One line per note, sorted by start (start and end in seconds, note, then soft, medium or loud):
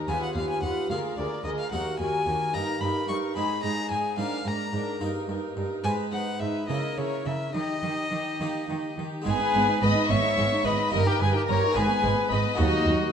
0.08 0.16 D#2 medium
0.08 0.33 D#2 soft
0.08 0.86 B3 soft
0.08 0.87 F4 soft
0.08 0.36 F4 soft
0.08 0.87 G#4 soft
0.08 0.34 B4 soft
0.08 0.22 G#5 medium
0.22 0.36 F#5 medium
0.22 0.35 F#5 medium
0.35 0.44 D#2 medium
0.35 0.60 D#2 soft
0.35 0.64 F4 soft
0.35 0.62 B4 soft
0.35 0.49 F5 medium
0.35 0.50 F5 medium
0.50 0.62 G#5 medium
0.50 0.64 G#5 soft
0.63 0.71 D#2 medium
0.63 0.88 D#2 soft
0.63 0.91 F4 soft
0.63 0.90 B4 soft
0.63 0.90 F#5 medium
0.90 0.98 D2 medium
0.90 1.15 D2 soft
0.90 1.69 A#3 soft
0.90 1.69 F4 soft
0.90 1.18 G#4 soft
0.90 1.69 G#4 soft
0.90 1.16 A#4 soft
0.90 0.98 F5 medium
0.90 1.18 F5 medium
1.17 1.26 D2 medium
1.17 1.43 D2 soft
1.17 1.44 G#4 soft
1.17 1.43 A#4 soft
1.17 1.44 D5 medium
1.17 1.46 D5 medium
1.44 1.53 D2 soft
1.44 1.70 D2 soft
1.44 1.72 G#4 soft
1.44 1.71 A#4 soft
1.44 1.50 D#5 medium
1.44 1.59 D#5 medium
1.59 1.71 F5 medium
1.59 1.73 F5 medium
1.72 1.80 D#2 medium
1.72 1.97 D#2 soft
1.72 2.51 A#3 soft
1.72 2.51 D#4 soft
1.72 1.98 F#4 medium
1.72 1.98 A#4 soft
1.72 2.51 A#4 soft
1.72 1.99 F#5 medium
1.72 1.81 F#5 medium
1.99 2.24 D#2 medium
1.99 2.07 D#2 medium
1.99 2.26 F#4 soft
1.99 2.26 A#4 soft
1.99 2.55 G#5 medium
1.99 2.53 G#5 medium
2.26 2.34 D#2 soft
2.26 2.51 D#2 soft
2.26 2.54 F#4 soft
2.26 2.53 A#4 soft
2.53 2.79 G2 soft
2.53 2.62 G2 medium
2.53 3.32 A#3 soft
2.53 3.33 D#4 soft
2.53 2.80 D#4 soft
2.53 2.80 A#4 medium
2.53 3.33 A#4 soft
2.53 2.81 A#5 medium
2.53 2.82 A#5 medium
2.81 2.89 G2 medium
2.81 3.06 G2 soft
2.81 3.08 D#4 medium
2.81 3.08 A#4 soft
2.81 3.08 B5 medium
2.81 3.09 B5 medium
3.08 3.16 G2 medium
3.08 3.33 G2 soft
3.08 3.35 D#4 medium
3.08 3.36 A#4 medium
3.08 3.16 C#6 medium
3.08 3.36 C#6 medium
3.36 3.44 G#2 medium
3.36 3.61 G#2 soft
3.36 4.15 G#3 soft
3.36 3.63 D#4 medium
3.36 4.15 D#4 soft
3.36 3.64 G#4 medium
3.36 4.15 D#5 soft
3.36 3.63 B5 medium
3.63 3.71 G#2 medium
3.63 3.88 G#2 soft
3.63 3.90 D#4 soft
3.63 3.90 G#4 soft
3.63 3.90 A#5 medium
3.63 3.91 A#5 medium
3.90 3.98 G#2 medium
3.90 4.16 G#2 soft
3.90 4.18 D#4 soft
3.90 4.18 G#4 soft
3.90 4.18 G#5 medium
3.90 4.19 G#5 medium
4.18 4.26 G#2 medium
4.18 4.43 G#2 soft
4.18 4.97 A#3 soft
4.18 4.97 D4 soft
4.18 4.46 D4 soft
4.18 4.43 A#4 medium
4.18 4.98 A#4 soft
4.18 4.49 F5 medium
4.18 4.46 F5 medium
4.45 4.53 G#2 medium
4.45 4.71 G#2 soft
4.45 4.73 D4 soft
4.45 4.71 A#4 soft
4.45 5.01 A#5 medium
4.45 5.02 A#5 medium
4.72 4.80 G#2 medium
4.72 4.98 G#2 soft
4.72 5.01 D4 medium
4.72 4.99 A#4 medium
5.00 5.09 G2 medium
5.00 5.26 G2 soft
5.00 5.81 A#3 soft
5.00 5.81 D#4 soft
5.00 5.28 D#4 medium
5.00 5.26 A#4 medium
5.00 5.81 A#4 soft
5.27 5.36 G2 medium
5.27 5.54 G2 soft
5.27 5.56 D#4 soft
5.27 5.55 A#4 soft
5.56 5.64 G2 medium
5.56 5.82 G2 soft
5.56 5.83 D#4 soft
5.56 5.84 A#4 soft
5.83 5.92 G#2 medium
5.83 6.10 G#2 soft
5.83 6.65 G#3 soft
5.83 6.11 D#4 medium
5.83 6.65 D#4 soft
5.83 6.10 B4 medium
5.83 6.66 B4 soft
5.83 5.92 G#5 medium
6.11 6.20 G#2 medium
6.11 6.38 G#2 soft
6.11 6.39 D#4 medium
6.11 6.40 B4 soft
6.11 6.20 F#5 medium
6.11 6.41 F#5 medium
6.40 6.48 G#2 medium
6.40 6.66 G#2 soft
6.40 6.68 D#4 medium
6.40 6.69 B4 soft
6.40 6.67 E5 medium
6.40 6.48 E5 medium
6.67 6.77 C#3 medium
6.67 6.95 C#3 soft
6.67 7.51 A#3 soft
6.67 6.95 E4 medium
6.67 7.51 E4 soft
6.67 6.97 A#4 soft
6.67 7.52 A#4 soft
6.67 6.96 D#5 medium
6.67 6.99 D#5 medium
6.96 7.05 C#3 medium
6.96 7.23 C#3 soft
6.96 7.25 E4 medium
6.96 7.25 A#4 soft
6.96 7.28 C#5 medium
6.96 7.25 C#5 medium
7.26 7.52 C#3 soft
7.26 7.34 C#3 medium
7.26 7.54 E4 soft
7.26 7.54 A#4 soft
7.26 7.54 E5 medium
7.53 7.62 D#3 medium
7.53 7.80 D#3 soft
7.53 7.81 D#4 soft
7.53 7.81 G4 soft
7.53 8.95 D#5 medium
7.82 7.91 D#3 medium
7.82 8.09 D#3 soft
7.82 8.11 D#4 soft
7.82 8.10 G4 soft
8.12 8.37 D#3 soft
8.12 8.20 D#3 soft
8.12 8.39 D#4 soft
8.12 8.40 G4 medium
8.40 8.48 D#3 medium
8.40 8.66 D#3 soft
8.40 9.03 A#3 soft
8.40 8.68 D#4 soft
8.40 9.03 D#4 soft
8.40 8.67 G4 soft
8.40 9.03 G4 soft
8.68 8.77 D#3 medium
8.68 8.95 D#3 soft
8.68 8.97 D#4 soft
8.68 8.96 G4 soft
8.97 9.06 D#3 soft
8.97 9.24 D#3 soft
8.97 9.26 D#4 soft
8.97 9.25 G4 medium
9.22 10.87 G#3 medium
9.22 10.87 B3 medium
9.22 10.88 D#4 medium
9.22 9.78 B4 medium
9.26 9.34 G#1 medium
9.26 9.34 G#2 medium
9.26 9.52 G#2 medium
9.26 9.40 B3 medium
9.26 10.89 G#4 soft
9.26 9.84 G#4 loud
9.26 9.78 G#5 medium
9.41 9.55 D#4 medium
9.54 9.63 G#1 medium
9.54 9.62 G#2 medium
9.54 9.80 G#2 medium
9.54 9.69 B3 medium
9.69 9.83 D#4 medium
9.82 9.91 G#1 medium
9.82 9.90 G#2 medium
9.82 10.08 G#2 medium
9.82 9.96 B3 medium
9.82 10.10 B4 medium
9.82 10.10 D#5 medium
9.82 10.10 B5 loud
9.97 10.10 D#4 medium
10.09 10.18 G#1 medium
10.09 10.18 G#2 medium
10.09 10.35 G#2 medium
10.09 10.24 B3 medium
10.09 10.66 C#5 medium
10.09 10.65 E5 medium
10.09 10.64 C#6 loud
10.24 10.38 D#4 medium
10.37 10.45 G#1 medium
10.37 10.45 G#2 medium
10.37 10.63 G#2 medium
10.37 10.50 B3 medium
10.52 10.65 D#4 medium
10.64 10.73 G#1 medium
10.64 10.73 G#2 medium
10.64 10.90 G#2 medium
10.64 10.79 B3 medium
10.64 10.93 B4 medium
10.64 10.90 D#5 medium
10.64 10.93 B5 medium
10.78 10.93 D#4 medium
10.89 11.71 A#3 soft
10.89 11.72 D#4 medium
10.89 10.98 D#5 medium
10.93 11.01 G1 medium
10.93 11.01 G2 medium
10.93 11.18 G2 medium
10.93 11.06 G4 medium
10.93 11.08 A#4 loud
10.93 11.07 A#5 loud
11.05 11.21 D#4 medium
11.05 11.24 G4 medium
11.05 11.20 A#4 medium
11.05 11.21 G5 loud
11.19 11.28 G1 medium
11.19 11.29 G2 medium
11.19 11.46 G2 medium
11.19 11.35 G4 medium
11.19 11.35 G#4 medium
11.19 11.34 B4 medium
11.19 11.34 G#5 loud
11.33 11.48 D#4 medium
11.33 11.41 G4 medium
11.33 11.48 A#4 medium
11.33 11.40 G5 medium
11.47 11.57 G1 medium
11.47 11.56 G2 medium
11.47 11.74 G2 medium
11.47 11.61 G4 medium
11.47 11.78 A#4 medium
11.47 11.75 C#5 medium
11.47 11.75 A#5 loud
11.63 11.77 D#4 medium
11.71 12.54 G#3 medium
11.71 12.55 B3 medium
11.71 12.55 D#4 medium
11.71 12.29 B4 medium
11.71 12.31 G#5 loud
11.76 11.84 G#1 medium
11.76 11.84 G#2 medium
11.76 12.02 G#2 medium
11.76 11.89 G#3 medium
11.76 12.30 G#4 medium
11.90 12.04 B3 medium
12.04 12.12 G#1 medium
12.04 12.12 G#2 medium
12.04 12.29 G#2 medium
12.04 12.18 G#3 medium
12.17 12.31 B3 medium
12.30 12.39 G#1 medium
12.30 12.39 G#2 medium
12.30 12.56 G#2 medium
12.30 12.44 G#3 medium
12.30 12.60 B4 medium
12.30 12.58 D#5 medium
12.30 12.57 B5 medium
12.45 12.59 B3 medium
12.54 13.12 A#3 medium
12.54 13.12 D#4 medium
12.54 13.12 F#4 medium
12.54 13.12 D#5 loud
12.58 12.66 D#2 medium
12.58 12.83 D#2 medium
12.58 12.67 D#2 medium
12.58 12.72 F#3 medium
12.58 13.12 D#4 loud
12.58 13.12 F#4 medium
12.73 12.87 A#3 medium
12.86 12.94 D#2 medium
12.86 13.11 D#2 medium
12.86 13.00 F#3 medium
13.01 13.12 A#3 medium